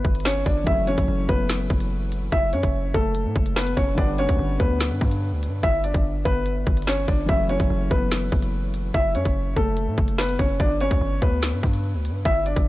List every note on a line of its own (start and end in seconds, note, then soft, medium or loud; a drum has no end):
0.00 0.22 B3 medium
0.00 0.22 B4 medium
0.05 0.44 G1 loud
0.05 kick loud
0.15 closed hi-hat medium
0.20 closed hi-hat medium
0.25 0.43 C#4 medium
0.25 0.42 C#5 medium
0.25 snare loud
0.25 closed hi-hat medium
0.30 closed hi-hat medium
0.46 0.66 G1 loud
0.46 0.63 D4 medium
0.46 0.63 D5 medium
0.46 kick medium
0.46 open hi-hat medium
0.64 0.97 F#1 loud
0.64 3.92 E3 medium
0.64 3.93 F#3 medium
0.64 3.94 A3 medium
0.64 0.84 E4 medium
0.64 0.84 E5 loud
0.64 kick loud
0.64 closed hi-hat medium
0.70 3.95 C#4 medium
0.87 1.27 C#4 medium
0.87 1.26 C#5 medium
0.87 closed hi-hat medium
0.98 1.08 F#1 loud
0.98 kick medium
0.98 closed hi-hat medium
1.08 1.28 F#1 loud
1.29 1.69 F#1 loud
1.29 2.29 B3 medium
1.29 2.28 B4 medium
1.29 kick medium
1.29 closed hi-hat medium
1.49 snare loud
1.49 closed hi-hat medium
1.70 2.30 F#1 loud
1.70 kick loud
1.80 closed hi-hat medium
2.12 closed hi-hat medium
2.32 2.54 F#1 loud
2.32 2.50 E4 medium
2.32 2.49 E5 loud
2.32 kick loud
2.32 closed hi-hat medium
2.53 2.63 F#2 loud
2.53 2.92 C#4 medium
2.53 2.92 C#5 medium
2.53 closed hi-hat medium
2.63 2.93 F#1 loud
2.63 kick medium
2.63 closed hi-hat medium
2.94 3.27 F#1 loud
2.94 3.53 A3 medium
2.94 3.53 A4 medium
2.94 kick medium
2.94 closed hi-hat medium
3.15 closed hi-hat medium
3.25 3.35 A2 loud
3.36 3.75 F#1 loud
3.36 kick loud
3.46 closed hi-hat medium
3.56 3.74 B3 medium
3.56 3.73 B4 medium
3.56 snare loud
3.56 closed hi-hat soft
3.67 closed hi-hat medium
3.77 3.97 F#1 loud
3.77 3.94 C#4 medium
3.77 3.94 C#5 medium
3.77 kick loud
3.77 closed hi-hat medium
3.95 4.28 G1 loud
3.95 7.23 D3 medium
3.95 7.24 G3 medium
3.95 7.25 B3 medium
3.95 4.15 D4 medium
3.95 4.15 D5 medium
3.95 kick loud
3.95 closed hi-hat medium
4.18 4.58 C#4 medium
4.18 4.58 C#5 medium
4.18 closed hi-hat medium
4.29 4.38 D2 loud
4.29 kick medium
4.29 closed hi-hat medium
4.39 4.59 G1 loud
4.60 4.92 D2 loud
4.60 5.60 B3 medium
4.60 5.59 B4 medium
4.60 kick medium
4.60 closed hi-hat medium
4.80 snare loud
4.80 closed hi-hat medium
4.91 5.01 G2 medium
5.01 5.34 G2 loud
5.01 kick loud
5.11 closed hi-hat medium
5.32 5.49 D2 loud
5.43 closed hi-hat medium
5.48 5.62 G2 loud
5.63 5.93 G1 loud
5.63 5.81 E4 medium
5.63 5.80 E5 loud
5.63 kick loud
5.63 closed hi-hat medium
5.84 6.23 D4 medium
5.84 6.23 D5 medium
5.84 closed hi-hat medium
5.94 6.24 G1 loud
5.94 kick loud
5.94 closed hi-hat medium
6.25 6.65 G1 loud
6.25 6.84 B3 medium
6.25 6.84 B4 medium
6.25 kick medium
6.25 closed hi-hat medium
6.46 closed hi-hat medium
6.67 7.06 G1 loud
6.67 kick medium
6.77 closed hi-hat medium
6.82 closed hi-hat medium
6.87 7.05 C#4 medium
6.87 7.04 C#5 medium
6.87 snare loud
6.87 closed hi-hat medium
6.93 closed hi-hat medium
7.08 7.28 G1 loud
7.08 7.25 D4 medium
7.08 7.25 D5 medium
7.08 kick medium
7.08 open hi-hat medium
7.26 7.59 F#1 loud
7.26 10.54 E3 medium
7.26 10.55 F#3 medium
7.26 10.56 A3 medium
7.26 7.46 E4 medium
7.26 7.46 E5 loud
7.26 kick loud
7.26 closed hi-hat medium
7.32 10.57 C#4 medium
7.49 7.89 C#4 medium
7.49 7.88 C#5 medium
7.49 closed hi-hat medium
7.60 7.70 F#1 loud
7.60 kick loud
7.60 closed hi-hat medium
7.70 7.90 F#1 loud
7.91 8.31 F#1 loud
7.91 8.91 B3 medium
7.91 8.90 B4 medium
7.91 kick medium
7.91 closed hi-hat medium
8.11 snare loud
8.11 closed hi-hat medium
8.32 8.92 F#1 loud
8.32 kick loud
8.42 closed hi-hat medium
8.74 closed hi-hat medium
8.94 9.17 F#1 loud
8.94 9.12 E4 medium
8.94 9.11 E5 loud
8.94 kick loud
8.94 closed hi-hat medium
9.15 9.25 F#2 loud
9.15 9.54 C#4 medium
9.15 9.54 C#5 medium
9.15 closed hi-hat medium
9.25 9.55 F#1 loud
9.25 kick medium
9.25 closed hi-hat medium
9.56 9.89 F#1 loud
9.56 10.15 A3 medium
9.56 10.15 A4 medium
9.56 kick medium
9.56 closed hi-hat medium
9.77 closed hi-hat medium
9.87 9.97 A2 medium
9.98 10.37 F#1 loud
9.98 kick loud
10.08 closed hi-hat medium
10.18 10.36 B3 medium
10.18 10.35 B4 medium
10.18 snare loud
10.18 closed hi-hat soft
10.29 closed hi-hat medium
10.39 10.59 F#1 loud
10.39 10.56 C#4 medium
10.39 10.56 C#5 medium
10.39 kick loud
10.39 closed hi-hat medium
10.60 10.90 G1 loud
10.60 10.77 D4 medium
10.60 10.77 D5 medium
10.60 kick loud
10.60 closed hi-hat medium
10.81 11.20 C#4 medium
10.81 11.20 C#5 medium
10.81 closed hi-hat medium
10.91 11.01 D2 loud
10.91 kick medium
10.91 closed hi-hat medium
11.01 11.21 G1 loud
11.22 11.54 D2 loud
11.22 12.22 B3 medium
11.22 12.21 B4 medium
11.22 kick medium
11.22 closed hi-hat medium
11.42 snare loud
11.42 closed hi-hat medium
11.53 11.63 G2 medium
11.63 11.96 G2 loud
11.63 kick loud
11.74 closed hi-hat medium
11.94 12.11 D2 loud
12.05 closed hi-hat medium
12.10 12.25 G2 loud
12.25 12.55 G1 loud
12.25 12.43 E4 medium
12.25 12.42 E5 loud
12.25 kick loud
12.25 closed hi-hat medium
12.46 12.68 D4 medium
12.46 12.68 D5 medium
12.46 closed hi-hat medium
12.56 12.68 G1 loud
12.56 kick medium
12.56 closed hi-hat medium